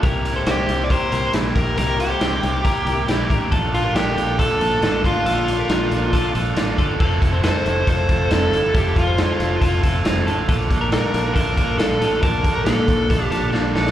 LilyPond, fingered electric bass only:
\new Staff \with { instrumentName = "Fingered electric bass" } { \clef bass \time 4/4 \key f \major \tempo 4 = 138 c,4 c,8 c,8. r16 c,8 bes,,8 bes,,8 | c,4 c,8 c,8. r16 c,8 bes,,8 a,,8 | bes,,4 bes,,8 bes,,8. r16 bes,,8 a,,8 a,,8 | bes,,4 bes,,8 bes,,8. r16 bes,,8 a,,8 g,,8 |
f,,8 f,,8. r16 f,,8 f,,8 f,,8 f,,8 g,,8 | f,,8 f,,8. r16 f,,8 f,,8 f,,8 f,,8 a,,8 | bes,,8 bes,,8. r16 bes,,8 bes,,8 bes,,8 bes,,8 a,,8 | bes,,8 bes,,8. r16 bes,,8 bes,,8 bes,,8 bes,,8 bes,,8 | }